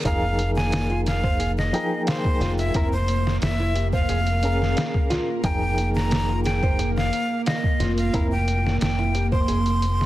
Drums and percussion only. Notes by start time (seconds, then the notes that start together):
0.05 kick, closed hi-hat
0.39 closed hi-hat
0.58 snare
0.72 snare, closed hi-hat
1.06 snare, closed hi-hat
1.24 kick
1.40 closed hi-hat
1.59 snare
1.74 closed hi-hat
2.07 snare, closed hi-hat
2.25 kick
2.41 snare, closed hi-hat
2.59 closed hi-hat
2.74 kick, closed hi-hat
3.08 closed hi-hat
3.27 snare
3.42 snare, closed hi-hat
3.76 closed hi-hat
3.93 kick
4.09 closed hi-hat
4.27 closed hi-hat
4.43 closed hi-hat
4.62 snare
4.77 snare, closed hi-hat
4.94 kick
5.11 snare, closed hi-hat
5.44 kick, closed hi-hat
5.78 closed hi-hat
5.97 snare
6.11 snare, closed hi-hat
6.45 snare, closed hi-hat
6.63 kick
6.79 closed hi-hat
6.97 snare
7.13 closed hi-hat
7.46 snare, closed hi-hat
7.64 kick
7.80 snare, closed hi-hat
7.98 closed hi-hat
8.14 kick, closed hi-hat
8.48 closed hi-hat
8.66 snare
8.81 snare, closed hi-hat
9.15 closed hi-hat
9.32 kick
9.48 closed hi-hat
9.66 closed hi-hat
9.82 closed hi-hat
10.01 snare